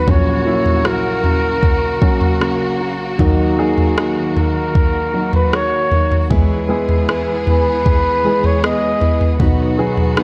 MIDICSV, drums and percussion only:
0, 0, Header, 1, 2, 480
1, 0, Start_track
1, 0, Tempo, 776197
1, 49, Time_signature, 4, 2, 24, 8
1, 6327, End_track
2, 0, Start_track
2, 0, Title_t, "Drums"
2, 48, Note_on_c, 9, 36, 91
2, 48, Note_on_c, 9, 43, 92
2, 109, Note_off_c, 9, 43, 0
2, 110, Note_off_c, 9, 36, 0
2, 406, Note_on_c, 9, 43, 48
2, 468, Note_off_c, 9, 43, 0
2, 526, Note_on_c, 9, 37, 82
2, 588, Note_off_c, 9, 37, 0
2, 765, Note_on_c, 9, 43, 53
2, 827, Note_off_c, 9, 43, 0
2, 1006, Note_on_c, 9, 43, 46
2, 1007, Note_on_c, 9, 36, 69
2, 1068, Note_off_c, 9, 43, 0
2, 1069, Note_off_c, 9, 36, 0
2, 1248, Note_on_c, 9, 36, 71
2, 1310, Note_off_c, 9, 36, 0
2, 1367, Note_on_c, 9, 43, 55
2, 1429, Note_off_c, 9, 43, 0
2, 1493, Note_on_c, 9, 37, 74
2, 1555, Note_off_c, 9, 37, 0
2, 1974, Note_on_c, 9, 43, 84
2, 1975, Note_on_c, 9, 36, 87
2, 2036, Note_off_c, 9, 36, 0
2, 2036, Note_off_c, 9, 43, 0
2, 2335, Note_on_c, 9, 43, 50
2, 2397, Note_off_c, 9, 43, 0
2, 2459, Note_on_c, 9, 37, 85
2, 2521, Note_off_c, 9, 37, 0
2, 2700, Note_on_c, 9, 43, 54
2, 2761, Note_off_c, 9, 43, 0
2, 2938, Note_on_c, 9, 43, 53
2, 2939, Note_on_c, 9, 36, 78
2, 3000, Note_off_c, 9, 43, 0
2, 3001, Note_off_c, 9, 36, 0
2, 3297, Note_on_c, 9, 43, 58
2, 3359, Note_off_c, 9, 43, 0
2, 3422, Note_on_c, 9, 37, 83
2, 3484, Note_off_c, 9, 37, 0
2, 3658, Note_on_c, 9, 43, 52
2, 3720, Note_off_c, 9, 43, 0
2, 3782, Note_on_c, 9, 43, 51
2, 3844, Note_off_c, 9, 43, 0
2, 3899, Note_on_c, 9, 43, 83
2, 3901, Note_on_c, 9, 36, 97
2, 3961, Note_off_c, 9, 43, 0
2, 3963, Note_off_c, 9, 36, 0
2, 4259, Note_on_c, 9, 43, 48
2, 4321, Note_off_c, 9, 43, 0
2, 4384, Note_on_c, 9, 37, 78
2, 4446, Note_off_c, 9, 37, 0
2, 4620, Note_on_c, 9, 43, 57
2, 4682, Note_off_c, 9, 43, 0
2, 4860, Note_on_c, 9, 43, 54
2, 4861, Note_on_c, 9, 36, 69
2, 4922, Note_off_c, 9, 43, 0
2, 4923, Note_off_c, 9, 36, 0
2, 5219, Note_on_c, 9, 43, 53
2, 5281, Note_off_c, 9, 43, 0
2, 5342, Note_on_c, 9, 37, 85
2, 5404, Note_off_c, 9, 37, 0
2, 5574, Note_on_c, 9, 43, 54
2, 5636, Note_off_c, 9, 43, 0
2, 5695, Note_on_c, 9, 43, 54
2, 5757, Note_off_c, 9, 43, 0
2, 5812, Note_on_c, 9, 43, 87
2, 5813, Note_on_c, 9, 36, 104
2, 5874, Note_off_c, 9, 36, 0
2, 5874, Note_off_c, 9, 43, 0
2, 6168, Note_on_c, 9, 43, 47
2, 6230, Note_off_c, 9, 43, 0
2, 6290, Note_on_c, 9, 37, 96
2, 6327, Note_off_c, 9, 37, 0
2, 6327, End_track
0, 0, End_of_file